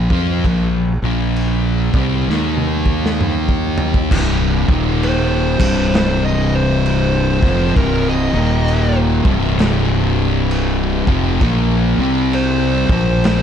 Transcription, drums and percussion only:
0, 0, Header, 1, 2, 480
1, 0, Start_track
1, 0, Key_signature, -3, "minor"
1, 0, Tempo, 913242
1, 238, Time_signature, 4, 2, 24, 8
1, 7056, End_track
2, 0, Start_track
2, 0, Title_t, "Drums"
2, 54, Note_on_c, 9, 36, 91
2, 107, Note_off_c, 9, 36, 0
2, 234, Note_on_c, 9, 36, 81
2, 235, Note_on_c, 9, 49, 51
2, 286, Note_off_c, 9, 36, 0
2, 288, Note_off_c, 9, 49, 0
2, 716, Note_on_c, 9, 49, 54
2, 769, Note_off_c, 9, 49, 0
2, 1019, Note_on_c, 9, 36, 124
2, 1071, Note_off_c, 9, 36, 0
2, 1209, Note_on_c, 9, 38, 52
2, 1262, Note_off_c, 9, 38, 0
2, 1354, Note_on_c, 9, 48, 58
2, 1406, Note_off_c, 9, 48, 0
2, 1502, Note_on_c, 9, 36, 74
2, 1554, Note_off_c, 9, 36, 0
2, 1607, Note_on_c, 9, 38, 68
2, 1659, Note_off_c, 9, 38, 0
2, 1685, Note_on_c, 9, 45, 77
2, 1738, Note_off_c, 9, 45, 0
2, 1833, Note_on_c, 9, 36, 92
2, 1885, Note_off_c, 9, 36, 0
2, 1985, Note_on_c, 9, 43, 93
2, 2037, Note_off_c, 9, 43, 0
2, 2072, Note_on_c, 9, 36, 86
2, 2124, Note_off_c, 9, 36, 0
2, 2161, Note_on_c, 9, 36, 107
2, 2164, Note_on_c, 9, 49, 59
2, 2164, Note_on_c, 9, 57, 123
2, 2214, Note_off_c, 9, 36, 0
2, 2217, Note_off_c, 9, 49, 0
2, 2217, Note_off_c, 9, 57, 0
2, 2462, Note_on_c, 9, 36, 103
2, 2515, Note_off_c, 9, 36, 0
2, 2644, Note_on_c, 9, 49, 67
2, 2696, Note_off_c, 9, 49, 0
2, 2942, Note_on_c, 9, 36, 121
2, 2944, Note_on_c, 9, 49, 122
2, 2995, Note_off_c, 9, 36, 0
2, 2996, Note_off_c, 9, 49, 0
2, 3121, Note_on_c, 9, 49, 53
2, 3129, Note_on_c, 9, 38, 110
2, 3174, Note_off_c, 9, 49, 0
2, 3181, Note_off_c, 9, 38, 0
2, 3604, Note_on_c, 9, 49, 58
2, 3656, Note_off_c, 9, 49, 0
2, 3903, Note_on_c, 9, 36, 97
2, 3915, Note_on_c, 9, 38, 34
2, 3955, Note_off_c, 9, 36, 0
2, 3967, Note_off_c, 9, 38, 0
2, 4081, Note_on_c, 9, 36, 98
2, 4082, Note_on_c, 9, 49, 49
2, 4133, Note_off_c, 9, 36, 0
2, 4134, Note_off_c, 9, 49, 0
2, 4563, Note_on_c, 9, 49, 59
2, 4615, Note_off_c, 9, 49, 0
2, 4862, Note_on_c, 9, 36, 119
2, 4915, Note_off_c, 9, 36, 0
2, 5040, Note_on_c, 9, 49, 62
2, 5048, Note_on_c, 9, 38, 105
2, 5092, Note_off_c, 9, 49, 0
2, 5100, Note_off_c, 9, 38, 0
2, 5523, Note_on_c, 9, 49, 62
2, 5576, Note_off_c, 9, 49, 0
2, 5820, Note_on_c, 9, 36, 102
2, 5872, Note_off_c, 9, 36, 0
2, 5997, Note_on_c, 9, 49, 56
2, 5998, Note_on_c, 9, 36, 93
2, 6049, Note_off_c, 9, 49, 0
2, 6051, Note_off_c, 9, 36, 0
2, 6481, Note_on_c, 9, 49, 57
2, 6534, Note_off_c, 9, 49, 0
2, 6777, Note_on_c, 9, 36, 120
2, 6830, Note_off_c, 9, 36, 0
2, 6958, Note_on_c, 9, 49, 62
2, 6966, Note_on_c, 9, 38, 106
2, 7011, Note_off_c, 9, 49, 0
2, 7018, Note_off_c, 9, 38, 0
2, 7056, End_track
0, 0, End_of_file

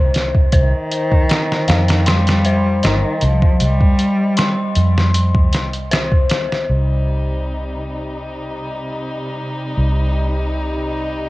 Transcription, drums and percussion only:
0, 0, Header, 1, 2, 480
1, 0, Start_track
1, 0, Key_signature, -3, "minor"
1, 0, Tempo, 769231
1, 329, Time_signature, 4, 2, 24, 8
1, 7045, End_track
2, 0, Start_track
2, 0, Title_t, "Drums"
2, 88, Note_on_c, 9, 42, 61
2, 99, Note_on_c, 9, 38, 40
2, 151, Note_off_c, 9, 42, 0
2, 162, Note_off_c, 9, 38, 0
2, 216, Note_on_c, 9, 36, 86
2, 278, Note_off_c, 9, 36, 0
2, 326, Note_on_c, 9, 42, 86
2, 328, Note_on_c, 9, 36, 102
2, 388, Note_off_c, 9, 42, 0
2, 390, Note_off_c, 9, 36, 0
2, 571, Note_on_c, 9, 42, 64
2, 633, Note_off_c, 9, 42, 0
2, 697, Note_on_c, 9, 36, 86
2, 759, Note_off_c, 9, 36, 0
2, 808, Note_on_c, 9, 42, 83
2, 819, Note_on_c, 9, 38, 112
2, 870, Note_off_c, 9, 42, 0
2, 881, Note_off_c, 9, 38, 0
2, 948, Note_on_c, 9, 38, 47
2, 1010, Note_off_c, 9, 38, 0
2, 1048, Note_on_c, 9, 42, 70
2, 1059, Note_on_c, 9, 38, 96
2, 1110, Note_off_c, 9, 42, 0
2, 1121, Note_off_c, 9, 38, 0
2, 1175, Note_on_c, 9, 42, 78
2, 1187, Note_on_c, 9, 38, 97
2, 1238, Note_off_c, 9, 42, 0
2, 1249, Note_off_c, 9, 38, 0
2, 1287, Note_on_c, 9, 42, 83
2, 1298, Note_on_c, 9, 38, 111
2, 1349, Note_off_c, 9, 42, 0
2, 1360, Note_off_c, 9, 38, 0
2, 1416, Note_on_c, 9, 42, 69
2, 1428, Note_on_c, 9, 38, 100
2, 1479, Note_off_c, 9, 42, 0
2, 1490, Note_off_c, 9, 38, 0
2, 1527, Note_on_c, 9, 42, 65
2, 1589, Note_off_c, 9, 42, 0
2, 1766, Note_on_c, 9, 42, 84
2, 1777, Note_on_c, 9, 38, 112
2, 1828, Note_off_c, 9, 42, 0
2, 1839, Note_off_c, 9, 38, 0
2, 2004, Note_on_c, 9, 42, 64
2, 2066, Note_off_c, 9, 42, 0
2, 2135, Note_on_c, 9, 36, 92
2, 2197, Note_off_c, 9, 36, 0
2, 2247, Note_on_c, 9, 42, 86
2, 2309, Note_off_c, 9, 42, 0
2, 2376, Note_on_c, 9, 36, 100
2, 2438, Note_off_c, 9, 36, 0
2, 2489, Note_on_c, 9, 42, 65
2, 2551, Note_off_c, 9, 42, 0
2, 2727, Note_on_c, 9, 42, 86
2, 2738, Note_on_c, 9, 38, 113
2, 2789, Note_off_c, 9, 42, 0
2, 2800, Note_off_c, 9, 38, 0
2, 2967, Note_on_c, 9, 42, 65
2, 3029, Note_off_c, 9, 42, 0
2, 3107, Note_on_c, 9, 38, 52
2, 3169, Note_off_c, 9, 38, 0
2, 3210, Note_on_c, 9, 42, 96
2, 3273, Note_off_c, 9, 42, 0
2, 3337, Note_on_c, 9, 36, 90
2, 3399, Note_off_c, 9, 36, 0
2, 3450, Note_on_c, 9, 42, 68
2, 3461, Note_on_c, 9, 38, 46
2, 3512, Note_off_c, 9, 42, 0
2, 3523, Note_off_c, 9, 38, 0
2, 3579, Note_on_c, 9, 42, 41
2, 3641, Note_off_c, 9, 42, 0
2, 3691, Note_on_c, 9, 42, 83
2, 3702, Note_on_c, 9, 38, 115
2, 3753, Note_off_c, 9, 42, 0
2, 3764, Note_off_c, 9, 38, 0
2, 3818, Note_on_c, 9, 36, 86
2, 3880, Note_off_c, 9, 36, 0
2, 3929, Note_on_c, 9, 42, 73
2, 3940, Note_on_c, 9, 38, 100
2, 3991, Note_off_c, 9, 42, 0
2, 4002, Note_off_c, 9, 38, 0
2, 4071, Note_on_c, 9, 38, 43
2, 4133, Note_off_c, 9, 38, 0
2, 7045, End_track
0, 0, End_of_file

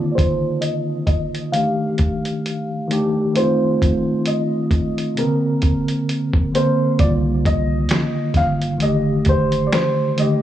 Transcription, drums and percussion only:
0, 0, Header, 1, 2, 480
1, 0, Start_track
1, 0, Tempo, 909091
1, 1771, Time_signature, 4, 2, 24, 8
1, 5502, End_track
2, 0, Start_track
2, 0, Title_t, "Drums"
2, 95, Note_on_c, 9, 36, 89
2, 99, Note_on_c, 9, 42, 68
2, 148, Note_off_c, 9, 36, 0
2, 152, Note_off_c, 9, 42, 0
2, 327, Note_on_c, 9, 42, 75
2, 380, Note_off_c, 9, 42, 0
2, 565, Note_on_c, 9, 36, 78
2, 566, Note_on_c, 9, 42, 54
2, 617, Note_off_c, 9, 36, 0
2, 618, Note_off_c, 9, 42, 0
2, 711, Note_on_c, 9, 42, 46
2, 764, Note_off_c, 9, 42, 0
2, 811, Note_on_c, 9, 42, 70
2, 864, Note_off_c, 9, 42, 0
2, 1046, Note_on_c, 9, 42, 53
2, 1052, Note_on_c, 9, 36, 84
2, 1098, Note_off_c, 9, 42, 0
2, 1105, Note_off_c, 9, 36, 0
2, 1189, Note_on_c, 9, 42, 48
2, 1241, Note_off_c, 9, 42, 0
2, 1297, Note_on_c, 9, 42, 63
2, 1350, Note_off_c, 9, 42, 0
2, 1536, Note_on_c, 9, 42, 81
2, 1589, Note_off_c, 9, 42, 0
2, 1772, Note_on_c, 9, 42, 73
2, 1825, Note_off_c, 9, 42, 0
2, 2017, Note_on_c, 9, 36, 87
2, 2020, Note_on_c, 9, 42, 64
2, 2070, Note_off_c, 9, 36, 0
2, 2073, Note_off_c, 9, 42, 0
2, 2247, Note_on_c, 9, 42, 79
2, 2300, Note_off_c, 9, 42, 0
2, 2486, Note_on_c, 9, 36, 78
2, 2488, Note_on_c, 9, 42, 58
2, 2538, Note_off_c, 9, 36, 0
2, 2541, Note_off_c, 9, 42, 0
2, 2630, Note_on_c, 9, 42, 45
2, 2683, Note_off_c, 9, 42, 0
2, 2731, Note_on_c, 9, 42, 70
2, 2784, Note_off_c, 9, 42, 0
2, 2966, Note_on_c, 9, 42, 59
2, 2972, Note_on_c, 9, 36, 80
2, 3019, Note_off_c, 9, 42, 0
2, 3025, Note_off_c, 9, 36, 0
2, 3106, Note_on_c, 9, 42, 46
2, 3159, Note_off_c, 9, 42, 0
2, 3216, Note_on_c, 9, 42, 65
2, 3269, Note_off_c, 9, 42, 0
2, 3345, Note_on_c, 9, 36, 90
2, 3397, Note_off_c, 9, 36, 0
2, 3458, Note_on_c, 9, 42, 74
2, 3511, Note_off_c, 9, 42, 0
2, 3691, Note_on_c, 9, 42, 75
2, 3692, Note_on_c, 9, 36, 105
2, 3743, Note_off_c, 9, 42, 0
2, 3744, Note_off_c, 9, 36, 0
2, 3935, Note_on_c, 9, 36, 87
2, 3938, Note_on_c, 9, 42, 70
2, 3988, Note_off_c, 9, 36, 0
2, 3991, Note_off_c, 9, 42, 0
2, 4165, Note_on_c, 9, 42, 79
2, 4176, Note_on_c, 9, 26, 80
2, 4177, Note_on_c, 9, 38, 103
2, 4218, Note_off_c, 9, 42, 0
2, 4228, Note_off_c, 9, 26, 0
2, 4230, Note_off_c, 9, 38, 0
2, 4404, Note_on_c, 9, 36, 72
2, 4405, Note_on_c, 9, 42, 54
2, 4415, Note_on_c, 9, 38, 32
2, 4457, Note_off_c, 9, 36, 0
2, 4457, Note_off_c, 9, 42, 0
2, 4468, Note_off_c, 9, 38, 0
2, 4549, Note_on_c, 9, 42, 44
2, 4602, Note_off_c, 9, 42, 0
2, 4647, Note_on_c, 9, 42, 72
2, 4700, Note_off_c, 9, 42, 0
2, 4883, Note_on_c, 9, 42, 57
2, 4890, Note_on_c, 9, 36, 82
2, 4936, Note_off_c, 9, 42, 0
2, 4943, Note_off_c, 9, 36, 0
2, 5026, Note_on_c, 9, 42, 48
2, 5079, Note_off_c, 9, 42, 0
2, 5134, Note_on_c, 9, 42, 63
2, 5135, Note_on_c, 9, 26, 77
2, 5136, Note_on_c, 9, 38, 96
2, 5187, Note_off_c, 9, 26, 0
2, 5187, Note_off_c, 9, 42, 0
2, 5189, Note_off_c, 9, 38, 0
2, 5374, Note_on_c, 9, 42, 82
2, 5426, Note_off_c, 9, 42, 0
2, 5502, End_track
0, 0, End_of_file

